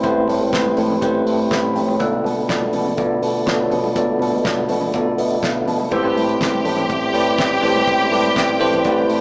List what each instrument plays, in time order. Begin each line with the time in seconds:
Already playing: tonewheel organ G3 A3 C4, tine electric piano A3 E4 G4 B4 C5
0.03 picked electric bass A1, tine electric piano A3 E4 G4 B4 C5, kick, closed hi-hat, muted conga
0.28 picked electric bass A2, open hi-hat, high conga
0.41 picked electric bass A2, high conga
0.52 picked electric bass A1, tine electric piano A3 E4 G4 B4 C5, kick, snare, closed hi-hat, muted conga
0.66 muted conga, high conga
0.77 picked electric bass A2, open hi-hat, low conga
0.90 low conga
1.01 picked electric bass A1, tine electric piano A3 E4 G4 B4 C5, kick, closed hi-hat, muted conga
1.15 muted conga
1.26 picked electric bass A2, open hi-hat
1.51 picked electric bass A1, tine electric piano B5, kick, snare, closed hi-hat
1.63 muted conga
1.74 picked electric bass A2, tine electric piano G5, open hi-hat, low conga
1.88 high conga
2.00 picked electric bass B1, tine electric piano B2 B3 F4 A4 D5, tonewheel organ D3 A3 B3, kick, closed hi-hat, muted conga
2.13 muted conga
2.24 picked electric bass B2, open hi-hat, high conga
2.37 picked electric bass B2, high conga
2.48 tine electric piano B2 B3 F4 A4 D5, kick, snare, closed hi-hat, muted conga
2.62 muted conga, high conga
2.73 picked electric bass B2, open hi-hat, low conga
2.86 low conga
2.97 picked electric bass B1, tine electric piano B2 B3 F4 A4 D5, kick, closed hi-hat, muted conga
3.22 picked electric bass B2, open hi-hat
3.46 picked electric bass B1, tine electric piano B2 B3 F4 A4 C#5, kick, snare, closed hi-hat, muted conga
3.53 tine electric piano D5
3.59 muted conga
3.70 picked electric bass B2, open hi-hat, low conga
3.84 high conga
3.95 picked electric bass B1, tine electric piano B2 B3 F4 A4 D5, kick, closed hi-hat
4.19 picked electric bass B2, open hi-hat, high conga
4.32 picked electric bass B2, high conga
4.44 picked electric bass B1, tine electric piano B2 B3 F4 A4 D5, kick, snare, closed hi-hat, muted conga
4.57 high conga
4.68 picked electric bass B2, open hi-hat, low conga
4.81 low conga
4.92 picked electric bass B1, tine electric piano B2 B3 F4 A4 D5, kick, closed hi-hat, muted conga
5.18 picked electric bass B2, tine electric piano E5, open hi-hat
5.43 picked electric bass B1, tine electric piano F5, kick, snare, closed hi-hat
5.54 muted conga
5.65 picked electric bass B2, tine electric piano A5, open hi-hat, low conga
5.80 high conga
5.91 picked electric bass A1, tonewheel organ G3 A3 C4, tine electric piano A3 E4 G4 B4 C5, string section G4 G5, kick, closed hi-hat, muted conga
6.03 tine electric piano A3 E4 G4 B4 C5
6.15 picked electric bass A2, open hi-hat, high conga
6.28 closed hi-hat, high conga
6.40 picked electric bass A1, kick, snare, closed hi-hat, muted conga
6.52 muted conga, high conga
6.64 picked electric bass A2, open hi-hat, low conga
6.77 closed hi-hat, low conga
6.88 picked electric bass A1, kick, closed hi-hat, muted conga
7.13 picked electric bass A2, tine electric piano A3 E4 G4 B4 D5, open hi-hat
7.26 closed hi-hat
7.38 picked electric bass A1, kick, snare, closed hi-hat, muted conga
7.50 muted conga
7.61 picked electric bass A2, tine electric piano A3 E4 G4 B4 C5, open hi-hat, low conga
7.75 closed hi-hat, high conga
7.87 picked electric bass A1, kick, closed hi-hat, muted conga
8.00 muted conga
8.10 picked electric bass A2, tine electric piano A3 E4 G4 B4 D5, open hi-hat, high conga
8.25 closed hi-hat, high conga
8.36 picked electric bass A1, kick, snare, closed hi-hat, muted conga
8.49 high conga
8.59 picked electric bass A2, tine electric piano A3 E4 G4 B4 C5, open hi-hat, low conga
8.73 closed hi-hat, low conga
8.84 picked electric bass A1, tine electric piano A3 E4 G4 B4 D5, kick, closed hi-hat, muted conga
8.98 muted conga
9.09 picked electric bass A2, open hi-hat